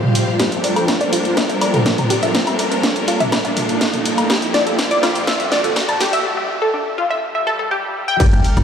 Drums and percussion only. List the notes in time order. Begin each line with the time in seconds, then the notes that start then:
0.03 mid tom
0.15 open hi-hat
0.40 kick, snare, closed hi-hat
0.52 closed hi-hat
0.64 open hi-hat
0.76 closed hi-hat, low woodblock
0.88 kick, snare, closed hi-hat
1.01 closed hi-hat
1.13 open hi-hat
1.25 closed hi-hat
1.37 kick, snare, closed hi-hat
1.50 closed hi-hat
1.61 open hi-hat, low woodblock
1.74 closed hi-hat, mid tom
1.86 kick, snare, closed hi-hat
1.98 closed hi-hat, mid tom
2.10 open hi-hat
2.23 closed hi-hat
2.35 kick, snare, closed hi-hat
2.47 closed hi-hat, low woodblock
2.59 open hi-hat
2.72 closed hi-hat
2.83 kick, snare, closed hi-hat
2.96 closed hi-hat
3.08 open hi-hat
3.20 closed hi-hat, mid tom
3.32 kick, snare, closed hi-hat, low woodblock
3.45 closed hi-hat
3.57 mid tom, open hi-hat
3.69 closed hi-hat
3.81 kick, snare, closed hi-hat
3.94 closed hi-hat, mid tom
4.05 open hi-hat
4.18 closed hi-hat, low woodblock
4.30 kick, snare, closed hi-hat
4.42 closed hi-hat
4.54 snare, open hi-hat
4.67 closed hi-hat
4.79 kick, snare, closed hi-hat
4.91 closed hi-hat
5.03 snare, open hi-hat, low woodblock
5.15 closed hi-hat
5.27 kick, snare, closed hi-hat
5.40 closed hi-hat
5.52 snare, open hi-hat
5.64 closed hi-hat, mid tom
5.76 kick, snare, closed hi-hat
5.89 closed hi-hat, mid tom, low woodblock
6.00 snare, open hi-hat
6.13 closed hi-hat
8.20 kick, closed hi-hat, crash
8.33 closed hi-hat
8.44 open hi-hat
8.57 closed hi-hat, low woodblock